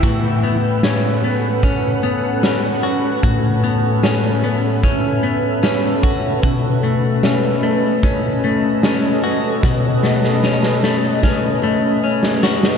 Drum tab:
HH |x---x---x---x---|x---x---x---x---|x---x---x---x---|----------------|
SD |----o-------o---|----o-------o---|----o-------o---|o-ooooo-o----ooo|
BD |o-------o-------|o-------o-----o-|o-------o-------|o-------o-------|